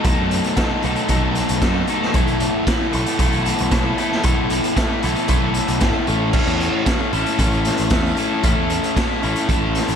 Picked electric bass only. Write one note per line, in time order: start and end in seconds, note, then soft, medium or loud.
0.05 0.15 B1 loud
0.20 0.39 F#2 medium
0.84 0.94 B1 loud
1.10 1.40 B1 loud
1.50 1.60 B1 medium
1.62 1.82 F#2 loud
2.15 2.25 B1 loud
2.28 2.48 B1 medium
2.94 3.04 B1 loud
3.19 3.50 B1 loud
3.61 3.70 B1 loud
3.72 3.92 B1 loud
4.24 4.35 B1 loud
4.39 4.58 B1 medium
5.04 5.14 B1 loud
5.29 5.59 B1 loud
5.69 5.79 B1 medium
5.82 5.92 G#1 loud
6.08 6.38 A1 medium
6.47 6.67 E2 medium
7.13 7.23 A1 loud
7.40 7.69 A1 loud
7.80 7.89 A1 medium
7.91 8.11 E2 loud
8.44 8.54 A1 loud
8.58 8.77 E2 medium
9.24 9.33 A1 loud
9.49 9.79 A1 loud
9.89 9.96 A1 medium